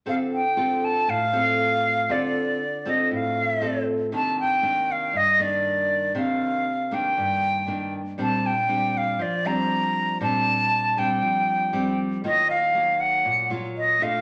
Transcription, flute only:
\new Staff \with { instrumentName = "Flute" } { \time 4/4 \key d \phrygian \tempo 4 = 118 f''8 g''4 a''8 f''2 | d''4. ees''8 f''4. r8 | a''8 g''4 f''8 ees''8 d''4. | f''4. g''2 r8 |
a''8 g''4 f''8 d''8 bes''4. | a''4. g''2 r8 | ees''8 f''4 ges''4 r8 ees''8 f''8 | }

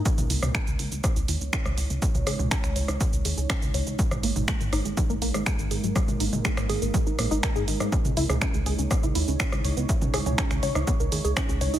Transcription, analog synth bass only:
\new Staff \with { instrumentName = "Analog synth bass" } { \clef bass \time 4/4 \key cis \dorian \tempo 4 = 122 r16 cis,16 cis,16 cis,16 r16 cis,16 cis,16 cis,16 r16 cis,16 dis,16 cis,16 r16 cis,16 cis,16 cis,16 | r16 cis,16 cis,16 cis,16 r16 cis,16 cis,16 cis,16 r16 cis,16 dis,16 cis,16 r16 cis,16 cis,16 cis,16 | r16 gis,,16 gis,,16 gis,,16 r16 gis,,16 gis,,16 gis,,16 r16 gis,,16 ais,,16 gis,,16 r16 gis,,16 gis,,16 gis,,16 | r16 gis,,16 gis,,16 gis,,16 r16 gis,,16 gis,,16 gis,,16 r16 gis,,16 ais,,16 gis,,16 r16 gis,,16 gis,,16 gis,16 |
r16 cis,16 cis,16 cis,16 r16 cis,16 cis,16 cis,16 r16 cis,16 dis,16 cis,16 r16 cis,16 cis,16 cis,16 | r16 cis,16 cis,16 cis,16 r16 cis,16 cis,16 cis,16 r16 cis,16 dis,16 cis,16 r16 cis,16 cis,16 cis,16 | }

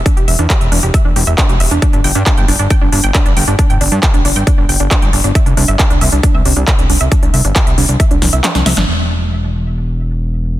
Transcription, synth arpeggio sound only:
\new Staff \with { instrumentName = "Synth arpeggio sound" } { \time 4/4 \key c \lydian \tempo 4 = 136 d'16 g'16 e''16 d'16 g'16 e''16 d'16 g'16 e''16 d'16 g'16 e''16 d'16 g'16 e''16 d'16 | d'16 d'16 g''16 d'16 d'16 g''16 d'16 d'16 g''16 d'16 d'16 g''16 d'16 d'16 g''16 d'16 | d'16 g''16 d'16 d'16 g''16 d'16 d'16 g''16 d'16 d'16 g''16 d'16 d'16 g''16 d'16 d'16 | e''16 d'16 d'16 e''16 d'16 d'16 e''16 d'16 d'16 e''16 d'16 d'16 e''16 d'16 d'16 e''16 |
d'16 d'16 e''16 d'16 d'16 e''16 d'16 d'16 e''16 d'16 d'16 e''16 d'16 d'16 e''16 d'16 | r1 | }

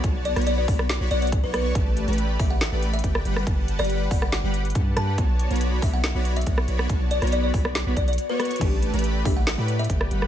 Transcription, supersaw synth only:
\new Staff \with { instrumentName = "Supersaw synth" } { \time 4/4 \key b \minor \tempo 4 = 140 <b fis' cis'' d'' a''>8. <b fis' cis'' d'' b''>8. <b fis' cis'' d'' b''>16 r8 <b fis' cis'' d'' b''>16 <b fis' cis'' d'' fis''>16 r8 <b fis' cis'' d'' cis'''>8. | <a g' b' d'' a''>8. <a g' b' d'' b''>8. <a g' b' d'' b''>16 r8 <a g' b' d'' b''>8 r16 <a g' b' d'' g''>8 <g g' b' fis'' b''>8 | <g g' b' fis'' a''>8. <g g' b' fis'' b''>8. <g g' b' fis'' b''>16 r8 <g g' b' fis'' b''>8 r16 <g g' b' fis'' a''>8 <g g' b' fis'' b''>8 | <b fis' cis'' d'' a''>8. <b fis' cis'' d'' b''>8. <b fis' cis'' d'' b''>16 r8 <b fis' cis'' d'' b''>8 r16 <b fis' cis'' d'' fis''>8 <b fis' cis'' d'' b''>8 |
<b fis' cis'' d'' a''>8. <b fis' cis'' d'' b''>8. <b fis' cis'' d'' b''>16 r8 <b fis' cis'' d'' b''>16 <b fis' cis'' d'' fis''>16 r8 <b fis' cis'' d'' cis'''>8. | <a g' b' d'' a''>8. <a g' b' d'' b''>8. <a g' b' d'' b''>16 r8 <a g' b' d'' b''>8 r16 <a g' b' d'' g''>8 <g g' b' fis'' b''>8 | }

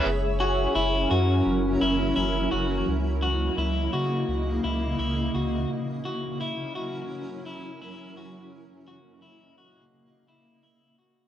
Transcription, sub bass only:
\new Staff \with { instrumentName = "Sub bass" } { \clef bass \time 4/4 \key fis \mixolydian \tempo 4 = 85 fis,,4 fis,,8 fis,8 fis,,8 fis,,8 fis,,8 fis,,8 | cis,4 cis,8 cis8 cis,8 cis,8 cis,8 cis,8 | r1 | r1 | }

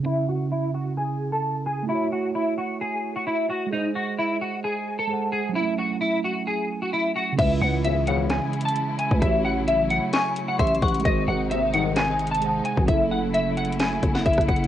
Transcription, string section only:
\new Staff \with { instrumentName = "String section" } { \clef bass \time 4/4 \key cis \minor \tempo 4 = 131 << { r1 | r1 | r1 | r1 |
<cis e'>1~ | <cis e'>1 | <bis, dis'>1 | <cis e'>1 | } \\ { r1 | r1 | r1 | r1 |
<e gis>1 | <fis a>1 | <dis gis>1 | <fis a>1 | } >> }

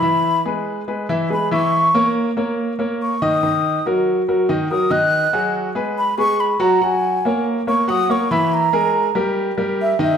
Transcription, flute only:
\new Staff \with { instrumentName = "Flute" } { \time 4/4 \key e \lydian \tempo 4 = 142 b''4 r2 b''8 cis'''8~ | cis'''4 r2 cis'''8 dis'''8~ | dis'''4 r2 dis'''8 fis'''8~ | fis'''4 r4 b''8 cis'''8 b''8 ais''8 |
gis''4. r8 cis'''8 dis'''8 cis'''8 b''8 | bes''4. r4. e''8 e''8 | }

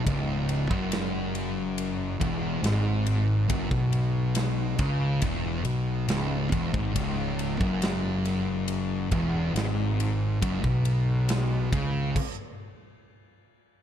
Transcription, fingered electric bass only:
\new Staff \with { instrumentName = "Fingered electric bass" } { \clef bass \time 4/4 \key cis \minor \tempo 4 = 69 cis,,8. r4. r16 e,,8 gis,,4 | fis,,16 b,,4~ b,,16 cis,8 e,,8 b,,8 cis,,8 e,,16 gis,,16 | cis,,8. fis,,4.~ fis,,16 e,,8 gis,,4 | fis,,16 b,,4~ b,,16 cis,8 r2 | }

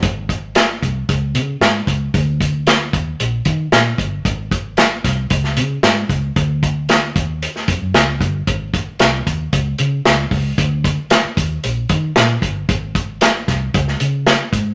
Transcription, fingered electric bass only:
\new Staff \with { instrumentName = "Fingered electric bass" } { \clef bass \time 4/4 \key aes \mixolydian \tempo 4 = 114 aes,,4. c,8 des,8 des8 aes,8 des,8 | d,4. ees,8 bes,,8 ees8 bes,8 g,,8 | aes,,4. c,8 des,8 des8 aes,8 des,8 | d,4. ees,8. r16 f,16 ges,16 des,8 g,,8 |
aes,,4 c,8 ees,8 des,8 des8 des,8 des,8 | d,4 r8 ees,8 bes,,8 ees8 bes,8 g,,8 | aes,,4. c,8 des,8 des4 aes,8 | }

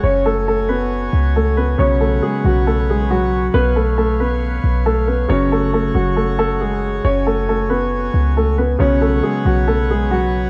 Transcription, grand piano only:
\new Staff \with { instrumentName = "Grand piano" } { \time 4/4 \key fis \minor \tempo 4 = 137 <cis' cis''>8 <a a'>8 <a a'>8 <b b'>4. <a a'>8 <b b'>8 | <cis' cis''>8 <a a'>8 <gis gis'>8 <fis fis'>8 <a a'>8 <gis gis'>8 <fis fis'>4 | <b b'>8 <a a'>8 <a a'>8 <b b'>4. <a a'>8 <b b'>8 | <cis' cis''>8 <a a'>8 <a a'>8 <fis fis'>8 <a a'>8 <a a'>8 <gis gis'>4 |
<cis' cis''>8 <a a'>8 <a a'>8 <b b'>4. <a a'>8 <b b'>8 | <cis' cis''>8 <a a'>8 <gis gis'>8 <fis fis'>8 <a a'>8 <gis gis'>8 <fis fis'>4 | }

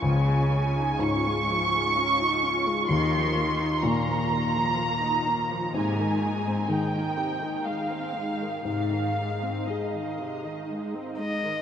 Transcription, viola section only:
\new Staff \with { instrumentName = "Viola section" } { \clef bass \time 3/4 \key aes \major \tempo 4 = 62 << { f'2.~ | f'2. | ees'2. | ees'2. | } \\ { f16 aes16 des'16 ees'16 des'16 aes16 f16 aes16 des'16 ees'16 des'16 aes16 | ees16 f16 bes16 ees'16 bes16 f16 ees16 f16 bes16 ees'16 bes16 f16 | c16 ees16 aes16 c'16 aes16 ees16 c16 ees16 aes16 c'16 aes16 ees16 | c16 ees16 aes16 c'16 aes16 ees16 c16 ees16 aes16 c'16 aes16 ees16 | } >> }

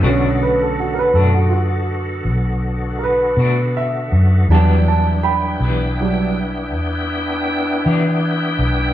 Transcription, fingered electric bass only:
\new Staff \with { instrumentName = "Fingered electric bass" } { \clef bass \time 12/8 \key b \minor \tempo 4. = 54 b,,4. fis,4. b,,4. b,4 fis,8 | e,4. b,,4. e,4. e4 b,,8 | }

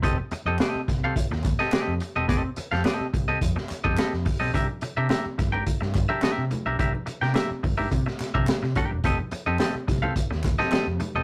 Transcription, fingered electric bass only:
\new Staff \with { instrumentName = "Fingered electric bass" } { \clef bass \time 4/4 \key f \major \tempo 4 = 107 f,,16 r8 f,16 r8 c,8 r16 ees,8 r8 f,16 r16 e,,16 | f,,16 r8 f,16 r8 c,8 f,16 r8 f,16 r16 f,16 r16 b,,16 | c,16 r8 c16 r8 g,,8 r16 g,8 r8 c16 r16 b,,16 | c,16 r8 c16 r8 g,,8 c16 r8 c16 r16 c16 r16 e,,16 |
f,,16 r8 f,16 r8 c,8 r16 ees,8 r8 f,16 r16 e,,16 | }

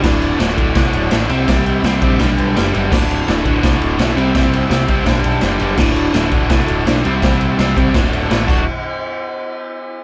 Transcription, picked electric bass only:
\new Staff \with { instrumentName = "Picked electric bass" } { \clef bass \time 4/4 \key d \mixolydian \tempo 4 = 167 d,,4 d,,8 d,,8 c,8 d,,8 a,,8 c,8 | c,4 c,8 bes,,8 b,,8 b,,8 fis,,8 fis,,8 | d,,4 d,,8 d,,8 c,8 d,,8 b,,8 c,8 | c,4 c,8 c,8 b,,8 b,,8 fis,,8 fis,,8 |
d,,4 d,,8 d,,8 c,8 d,,8 b,,8 c,8 | c,4 c,8 c,8 d,,8 d,,8 a,,8 d,,8 | r1 | }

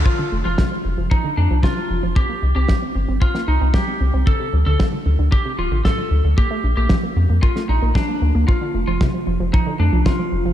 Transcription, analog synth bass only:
\new Staff \with { instrumentName = "Analog synth bass" } { \clef bass \time 4/4 \key bes \major \tempo 4 = 114 r8 f,,16 f,,16 r8 f,,16 f,,16 r8 f,16 c,16 r8 f,,16 f,,16 | r8 c,16 c,16 r8 g,,16 g,,16 r8 c,16 c,16 r8 c,16 c,16 | r8 d,16 d,16 r8 d,16 d,16 r8 d,,16 a,,16 r8 d,16 d,16 | r8 bes,,16 bes,,16 r8 f,16 f,16 r8 bes,,16 bes,,16 r8 d,16 d,16 |
r8 f,,16 f,,16 r8 f,,16 f,,16 r8 f,16 c,16 r8 f,,16 f,,16 | }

